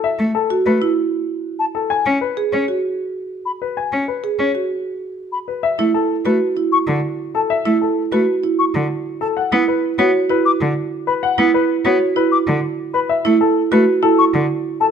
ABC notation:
X:1
M:6/4
L:1/8
Q:1/4=193
K:Bdor
V:1 name="Flute"
z8 z2 a z | z8 z2 b z | z8 z2 b z | z6 z c' z3 a |
z6 z c' z3 a | z6 z d' z3 b | z6 z d' z3 b | z6 z c' z3 a |]
V:2 name="Grand piano"
e z A z B z6 A | g z B z c z6 B | g z B z c z6 B | e z A z B z6 A |
e z A z B z6 A | f z B z c z B z4 B | f z B z c z B z4 B | e z A z B z A z4 A |]
V:3 name="Marimba"
z3 F z E z6 | z3 G z F z6 | z3 G z F z6 | z E z2 F z E z4 z |
z E z2 F z E z4 z | z E z2 F z E z4 z | z E z2 F z E z4 z | z E z2 F z E z4 z |]
V:4 name="Cello"
z A, z2 A, z6 z | z C z2 C z6 z | z C z2 C z6 z | z A, z2 A, z3 D, z3 |
z A, z2 A, z3 D, z3 | z B, z2 B, z3 D, z3 | z B, z2 B, z3 D, z3 | z A, z2 A, z3 D, z3 |]